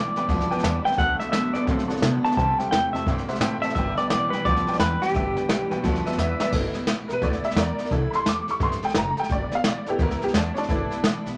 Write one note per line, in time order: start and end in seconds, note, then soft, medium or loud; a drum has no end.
0.00 0.12 B1 loud
0.00 0.15 G2 medium
0.00 0.17 E3 medium
0.00 0.16 G3 medium
0.00 0.15 B3 medium
0.00 0.15 E4 medium
0.00 0.85 D5 loud
0.16 0.27 B1 medium
0.16 0.28 G2 medium
0.16 0.28 E3 soft
0.16 0.28 G3 medium
0.16 0.29 B3 medium
0.16 0.29 E4 medium
0.16 0.24 B4 medium
0.16 0.25 D5 medium
0.16 0.25 G5 medium
0.16 snare soft
0.28 0.46 D2 loud
0.28 0.51 G2 medium
0.28 0.51 D3 medium
0.28 0.51 E3 medium
0.28 0.62 F3 loud
0.28 0.51 G3 medium
0.28 0.50 B3 loud
0.28 0.49 E4 loud
0.28 0.43 B4 medium
0.28 0.42 D5 medium
0.28 0.43 F#5 medium
0.28 kick loud
0.28 snare soft
0.41 snare soft
0.50 0.62 E3 medium
0.50 0.63 G3 medium
0.50 0.64 B3 medium
0.50 0.64 E4 medium
0.50 0.59 B4 loud
0.50 0.59 D5 loud
0.50 0.59 G5 loud
0.50 muted upright bass stroke medium
0.50 snare soft
0.58 snare soft
0.63 0.81 E2 medium
0.63 0.84 G2 medium
0.63 0.86 E3 medium
0.63 0.86 G3 medium
0.63 0.85 B3 medium
0.63 0.85 E4 medium
0.63 0.77 B4 loud
0.63 0.77 D5 medium
0.63 0.77 A5 loud
0.63 snare loud
0.63 hi-hat pedal medium
0.84 0.98 G2 medium
0.84 0.98 E3 soft
0.84 0.98 G3 soft
0.84 0.98 B3 medium
0.84 0.99 E4 soft
0.84 0.93 B4 medium
0.84 0.93 D5 medium
0.84 0.93 E5 medium
0.84 0.98 G5 medium
0.84 muted upright bass stroke medium
0.84 snare soft
0.92 snare soft
0.97 1.16 D2 medium
0.97 1.21 D3 medium
0.97 1.21 F#3 medium
0.97 1.21 A3 medium
0.97 1.21 B3 medium
0.97 1.20 F#4 medium
0.97 1.11 A4 medium
0.97 1.11 D5 medium
0.97 1.12 F#5 loud
0.97 1.19 F#5 loud
0.97 kick loud
0.97 snare soft
1.19 1.33 A3 soft
1.19 1.34 B3 soft
1.19 1.34 F#4 medium
1.19 1.28 A4 medium
1.19 1.28 D5 medium
1.19 1.31 E5 loud
1.19 1.28 A5 medium
1.19 muted upright bass stroke medium
1.19 snare soft
1.32 1.50 F#2 medium
1.32 1.53 D3 medium
1.32 1.56 F#3 medium
1.32 1.56 A3 medium
1.32 1.55 B3 medium
1.32 1.54 F#4 medium
1.32 1.46 A4 medium
1.32 1.47 D5 medium
1.32 1.55 E5 loud
1.32 1.47 E5 medium
1.32 snare medium
1.32 hi-hat pedal medium
1.53 1.65 F#2 medium
1.53 1.67 D3 medium
1.53 1.69 B3 soft
1.53 1.68 F#4 medium
1.53 1.62 A4 medium
1.53 1.66 D5 medium
1.53 1.63 D5 medium
1.53 1.63 F#5 medium
1.53 snare soft
1.58 1.68 A3 soft
1.66 1.85 A2 loud
1.66 1.91 D3 medium
1.66 1.91 F#3 medium
1.66 1.91 A3 medium
1.66 2.01 C4 loud
1.66 1.80 A4 medium
1.66 1.80 D5 medium
1.66 1.80 F#5 medium
1.66 kick loud
1.66 snare soft
1.70 1.90 B3 medium
1.70 1.89 F#4 medium
1.79 snare soft
1.88 2.03 A3 medium
1.88 2.03 B3 medium
1.88 2.03 F#4 medium
1.88 1.97 A4 loud
1.88 1.97 D5 loud
1.88 1.97 F#5 loud
1.88 muted upright bass stroke medium
1.88 snare soft
1.97 snare soft
2.02 2.20 C3 medium
2.02 2.23 D3 medium
2.02 2.25 F#3 medium
2.02 2.25 A3 medium
2.02 2.25 B3 medium
2.02 2.24 F#4 medium
2.02 2.16 A4 loud
2.02 2.16 D5 loud
2.02 2.16 F#5 loud
2.02 snare loud
2.02 hi-hat pedal medium
2.24 2.37 D3 medium
2.24 2.38 A3 soft
2.24 2.39 B3 soft
2.24 2.38 F#4 soft
2.24 2.32 A4 medium
2.24 2.33 D5 medium
2.24 2.33 F#5 medium
2.24 2.36 A5 loud
2.24 muted upright bass stroke medium
2.24 snare soft
2.31 snare soft
2.37 2.55 C2 medium
2.37 2.60 C3 medium
2.37 2.60 E3 medium
2.37 2.70 G3 loud
2.37 2.61 A3 medium
2.37 2.60 E4 medium
2.37 2.51 C5 medium
2.37 2.51 E5 medium
2.37 2.51 G5 medium
2.37 2.59 A5 loud
2.37 kick loud
2.37 snare soft
2.41 2.59 G4 medium
2.59 2.73 A3 soft
2.59 2.73 E4 medium
2.59 2.73 G4 medium
2.59 2.67 C5 medium
2.59 2.67 E5 medium
2.59 2.70 G5 medium
2.59 2.67 G5 medium
2.59 muted upright bass stroke medium
2.59 snare soft
2.71 2.89 E2 loud
2.71 2.92 C3 medium
2.71 2.95 E3 medium
2.71 2.92 A3 medium
2.71 2.86 C5 medium
2.71 2.86 E5 medium
2.71 2.93 G5 medium
2.71 2.86 G5 medium
2.71 snare loud
2.71 hi-hat pedal medium
2.93 3.04 E2 medium
2.93 3.05 C3 medium
2.93 3.07 A3 medium
2.93 3.07 E4 soft
2.93 3.07 G4 medium
2.93 3.02 C5 medium
2.93 3.06 E5 medium
2.93 3.02 E5 medium
2.93 3.03 A5 medium
2.93 snare soft
3.06 3.24 G2 medium
3.06 3.29 C3 medium
3.06 3.29 E3 medium
3.06 3.30 A3 medium
3.06 3.39 A#3 medium
3.06 3.30 E4 medium
3.06 3.28 G4 medium
3.06 3.20 C5 medium
3.06 3.21 E5 medium
3.06 3.21 G5 medium
3.06 kick loud
3.06 snare soft
3.18 snare soft
3.28 3.42 E4 medium
3.28 3.42 G4 medium
3.28 3.36 C5 loud
3.28 3.37 E5 loud
3.28 3.37 F#5 loud
3.28 muted upright bass stroke medium
3.28 snare soft
3.32 3.42 A3 medium
3.32 snare soft
3.40 3.58 A2 medium
3.40 3.61 C3 medium
3.40 3.64 E3 medium
3.40 3.64 A3 medium
3.40 3.64 E4 medium
3.40 3.63 G4 medium
3.40 3.54 C5 loud
3.40 3.55 E5 loud
3.40 3.55 G5 loud
3.40 snare loud
3.40 hi-hat pedal loud
3.62 3.75 C3 medium
3.62 3.77 E4 medium
3.62 3.77 G4 medium
3.62 3.71 C5 medium
3.62 3.74 E5 loud
3.62 3.71 E5 medium
3.62 3.72 A5 medium
3.62 muted upright bass stroke medium
3.62 snare soft
3.67 3.78 A3 soft
3.67 snare soft
3.75 3.93 G1 medium
3.75 3.98 G2 medium
3.75 3.99 D3 medium
3.75 3.99 E3 medium
3.75 3.99 G3 medium
3.75 3.99 B3 medium
3.75 3.98 E4 medium
3.75 3.90 B4 medium
3.75 3.90 D5 medium
3.75 3.97 E5 loud
3.75 3.91 G5 loud
3.75 kick loud
3.75 snare soft
3.97 4.11 G3 medium
3.97 4.12 B3 medium
3.97 4.11 E4 medium
3.97 4.06 B4 medium
3.97 4.09 D5 loud
3.97 4.06 D5 medium
3.97 4.06 G5 medium
3.97 muted upright bass stroke medium
3.97 snare soft
4.01 4.10 E3 soft
4.10 4.28 B1 loud
4.10 4.31 G2 medium
4.10 4.33 E3 medium
4.10 4.34 G3 medium
4.10 4.33 B3 medium
4.10 4.32 E4 medium
4.10 4.25 B4 medium
4.10 4.33 D5 loud
4.10 4.25 D5 medium
4.10 4.25 G5 medium
4.10 snare loud
4.10 hi-hat pedal medium
4.30 4.42 B1 medium
4.30 4.44 G2 medium
4.30 4.45 E4 medium
4.30 4.45 B4 medium
4.30 4.41 B4 medium
4.30 4.41 D5 medium
4.30 4.41 G5 medium
4.30 snare soft
4.34 4.45 E3 soft
4.34 4.45 G3 medium
4.34 4.45 B3 medium
4.44 4.63 D2 loud
4.44 4.68 G2 medium
4.44 4.68 D3 medium
4.44 4.68 E3 medium
4.44 4.78 F3 medium
4.44 4.67 G3 medium
4.44 4.67 B3 medium
4.44 4.66 E4 medium
4.44 4.58 B4 medium
4.44 4.58 D5 medium
4.44 4.80 D5 loud
4.44 4.59 G5 medium
4.44 kick loud
4.44 snare soft
4.56 snare soft
4.67 4.78 E3 soft
4.67 4.79 G3 soft
4.67 4.80 B3 medium
4.67 4.80 E4 medium
4.67 4.75 B4 medium
4.67 4.75 D5 medium
4.67 4.76 G5 loud
4.67 muted upright bass stroke medium
4.67 snare soft
4.73 snare soft
4.79 4.97 E2 medium
4.79 5.00 G2 medium
4.79 5.01 E3 medium
4.79 4.99 E4 medium
4.79 4.93 B4 medium
4.79 5.00 B4 medium
4.79 4.93 D5 medium
4.79 4.93 G5 loud
4.79 snare loud
4.79 hi-hat pedal medium
5.00 5.13 G2 medium
5.00 5.13 E3 soft
5.00 5.13 G3 soft
5.00 5.14 B3 soft
5.00 5.14 E4 soft
5.00 5.76 G4 medium
5.00 5.10 B4 medium
5.00 5.10 D5 medium
5.00 5.10 G5 medium
5.00 snare soft
5.08 snare soft
5.14 5.32 G1 medium
5.14 5.36 G2 medium
5.14 5.36 D3 medium
5.14 5.37 E3 medium
5.14 5.37 G3 medium
5.14 5.36 B3 medium
5.14 5.35 E4 medium
5.14 5.28 B4 medium
5.14 5.28 D5 medium
5.14 5.28 E5 loud
5.14 kick loud
5.14 snare soft
5.35 5.47 E3 soft
5.35 5.48 G3 soft
5.35 5.49 B3 medium
5.35 5.49 E4 soft
5.35 5.44 B4 medium
5.35 5.44 D5 medium
5.35 5.44 G5 medium
5.35 muted upright bass stroke medium
5.35 snare soft
5.48 5.67 B1 medium
5.48 5.70 G2 medium
5.48 5.70 E3 medium
5.48 5.71 G3 medium
5.48 5.70 E4 medium
5.48 5.62 B4 medium
5.48 5.62 D5 medium
5.48 5.63 G5 medium
5.48 snare loud
5.48 hi-hat pedal medium
5.70 5.81 B1 medium
5.70 5.82 G2 medium
5.70 5.84 E3 soft
5.70 5.84 G3 medium
5.70 5.84 B3 medium
5.70 5.84 E4 medium
5.70 5.78 B4 loud
5.70 5.79 D5 medium
5.70 5.79 G5 loud
5.70 snare soft
5.76 6.15 F#4 medium
5.83 6.01 D2 medium
5.83 6.06 G2 medium
5.83 6.06 D3 loud
5.83 6.07 E3 medium
5.83 6.16 F3 medium
5.83 6.06 G3 medium
5.83 6.06 B3 loud
5.83 6.05 E4 loud
5.83 5.97 B4 medium
5.83 5.97 D5 medium
5.83 5.97 F#5 loud
5.83 kick loud
5.83 snare soft
5.95 snare soft
6.05 6.18 E3 medium
6.05 6.19 G3 medium
6.05 6.19 B3 medium
6.05 6.19 E4 medium
6.05 6.13 B4 loud
6.05 6.13 D5 medium
6.05 6.14 E5 loud
6.05 snare soft
6.12 snare soft
6.17 6.35 E2 medium
6.17 6.38 G2 medium
6.17 6.41 E3 medium
6.17 6.41 G3 medium
6.17 6.40 B3 medium
6.17 6.32 B4 loud
6.17 6.32 D5 loud
6.17 6.32 E5 loud
6.17 snare medium
6.17 hi-hat pedal loud
6.21 6.39 E4 medium
6.40 6.52 G2 medium
6.40 6.53 E3 soft
6.40 6.53 G3 medium
6.40 6.53 B3 medium
6.40 6.53 E4 medium
6.40 6.48 B4 medium
6.40 6.48 D5 medium
6.40 6.49 E5 loud
6.40 snare medium
6.52 6.70 G1 medium
6.52 6.75 G2 medium
6.52 6.76 D3 medium
6.52 6.76 E3 medium
6.52 6.75 G3 medium
6.52 6.79 A3 medium
6.52 6.79 B3 soft
6.52 6.74 B3 medium
6.52 6.73 E4 loud
6.52 6.80 E4 medium
6.52 kick loud
6.52 snare soft
6.52 crash loud
6.74 6.87 E3 medium
6.74 6.88 G3 medium
6.74 6.88 B3 medium
6.74 6.88 E4 medium
6.74 muted upright bass stroke medium
6.74 snare soft
6.87 7.05 B1 loud
6.87 7.10 E3 medium
6.87 7.09 G3 medium
6.87 7.08 B3 medium
6.87 7.08 E4 medium
6.87 snare loud
6.87 hi-hat pedal medium
7.08 7.20 B1 medium
7.08 7.21 E3 medium
7.08 7.22 G3 medium
7.08 7.22 B3 medium
7.08 7.22 E4 medium
7.08 7.10 A#4 medium
7.08 snare soft
7.13 7.24 B4 loud
7.22 7.40 D2 medium
7.22 7.44 G2 medium
7.22 7.44 D3 medium
7.22 7.44 E3 medium
7.22 7.45 G3 medium
7.22 7.42 A3 soft
7.22 7.42 B3 soft
7.22 7.45 B3 medium
7.22 7.42 E4 soft
7.22 7.43 E4 medium
7.22 7.44 D5 medium
7.22 kick loud
7.22 snare soft
7.33 snare soft
7.43 7.56 E3 soft
7.43 7.57 G3 soft
7.43 7.58 B3 medium
7.43 7.57 E4 medium
7.43 7.57 E5 medium
7.43 muted upright bass stroke medium
7.43 snare soft
7.50 snare soft
7.55 7.73 E2 medium
7.55 7.79 E3 medium
7.55 7.80 G3 medium
7.55 7.78 E4 medium
7.55 7.90 A#4 medium
7.55 7.91 D5 medium
7.55 snare loud
7.55 hi-hat pedal medium
7.59 7.79 B3 medium
7.78 7.90 E3 soft
7.78 7.91 G3 soft
7.78 7.93 B3 soft
7.78 7.92 E4 soft
7.78 snare soft
7.85 snare soft
7.91 8.09 C2 medium
7.91 8.14 C3 medium
7.91 8.14 E3 medium
7.91 8.13 G3 medium
7.91 8.17 A3 medium
7.91 8.18 D4 soft
7.91 8.18 E4 medium
7.91 8.13 E4 medium
7.91 8.12 A4 medium
7.91 kick loud
7.91 snare soft
8.11 8.25 G3 soft
8.11 8.25 E4 medium
8.11 8.26 A4 medium
8.11 8.12 B5 medium
8.11 muted upright bass stroke medium
8.11 snare soft
8.15 8.27 C6 loud
8.25 8.43 E2 loud
8.25 8.48 E3 medium
8.25 8.48 G3 medium
8.25 8.47 E4 medium
8.25 8.47 A4 medium
8.25 8.49 D6 medium
8.25 snare loud
8.25 hi-hat pedal medium
8.47 8.58 E2 medium
8.47 8.60 G3 medium
8.47 8.60 E4 soft
8.47 8.61 A4 medium
8.47 8.62 C#6 medium
8.47 snare soft
8.60 8.78 G2 loud
8.60 8.83 C3 medium
8.60 8.83 E3 medium
8.60 8.83 G3 medium
8.60 8.82 E4 medium
8.60 8.81 A4 medium
8.60 8.83 C6 medium
8.60 kick loud
8.60 snare soft
8.72 snare soft
8.82 8.95 G3 soft
8.82 8.96 E4 soft
8.82 8.96 A4 medium
8.82 8.97 G5 medium
8.82 muted upright bass stroke medium
8.82 snare soft
8.89 snare soft
8.95 9.13 F#1 medium
8.95 9.18 E3 medium
8.95 9.17 E4 medium
8.95 9.16 A4 medium
8.95 9.18 A#5 medium
8.95 snare loud
8.95 hi-hat pedal medium
9.17 9.30 G3 soft
9.17 9.30 E4 soft
9.17 9.30 A4 medium
9.17 9.31 G5 medium
9.17 muted upright bass stroke medium
9.17 snare soft
9.23 snare soft
9.29 9.47 G1 medium
9.29 9.52 G2 medium
9.29 9.52 D3 medium
9.29 9.52 E3 medium
9.29 9.52 G3 medium
9.29 9.51 B3 medium
9.29 9.50 E4 medium
9.29 9.53 D5 medium
9.29 kick loud
9.29 snare soft
9.52 9.63 E3 medium
9.52 9.64 G3 medium
9.52 9.65 B3 medium
9.52 9.65 E4 soft
9.52 9.66 F5 loud
9.52 muted upright bass stroke medium
9.52 snare soft
9.64 9.82 B1 loud
9.64 9.87 E3 medium
9.64 9.86 G3 medium
9.64 9.86 B3 medium
9.64 9.85 E4 medium
9.64 9.88 D5 medium
9.64 snare loud
9.64 hi-hat pedal medium
9.86 9.97 B1 medium
9.86 9.98 E3 medium
9.86 9.98 G3 soft
9.86 10.33 A3 medium
9.86 9.99 B3 medium
9.86 10.33 B3 medium
9.86 9.99 E4 medium
9.86 10.33 E4 medium
9.86 10.01 G4 medium
9.86 snare soft
9.99 10.17 D2 loud
9.99 10.21 G2 medium
9.99 10.21 D3 medium
9.99 10.22 E3 medium
9.99 10.21 G3 medium
9.99 10.20 B3 medium
9.99 10.20 E4 medium
9.99 10.23 A#4 medium
9.99 kick loud
9.99 snare soft
10.11 snare soft
10.21 10.33 E3 soft
10.21 10.34 G3 soft
10.21 10.34 B3 medium
10.21 10.34 E4 medium
10.21 10.35 G4 medium
10.21 muted upright bass stroke medium
10.21 snare soft
10.28 snare soft
10.34 10.52 E2 loud
10.34 10.57 D4 medium
10.34 10.54 E4 medium
10.34 snare loud
10.34 hi-hat pedal medium
10.54 10.68 E3 soft
10.54 10.69 G3 soft
10.54 10.69 B3 soft
10.54 10.56 C#4 medium
10.54 10.69 E4 medium
10.54 snare soft
10.58 11.25 D4 loud
10.63 snare soft
10.68 10.86 G1 medium
10.68 10.91 G2 medium
10.68 10.91 D3 medium
10.68 10.91 E3 medium
10.68 10.90 G3 medium
10.68 10.90 A3 medium
10.68 10.90 B3 medium
10.68 10.96 E4 medium
10.68 10.89 E4 medium
10.68 kick loud
10.68 snare soft
10.91 11.03 E3 soft
10.91 11.04 G3 soft
10.91 11.04 B3 medium
10.91 11.04 E4 medium
10.91 muted upright bass stroke medium
10.91 snare soft
11.04 11.21 B1 loud
11.04 11.26 E3 medium
11.04 11.26 G3 medium
11.04 11.25 B3 medium
11.04 11.24 E4 medium
11.04 snare loud
11.04 hi-hat pedal medium
11.25 11.36 B1 medium
11.25 11.37 E3 medium
11.25 11.37 G3 medium
11.25 11.37 B3 medium
11.25 11.37 E4 medium
11.25 snare soft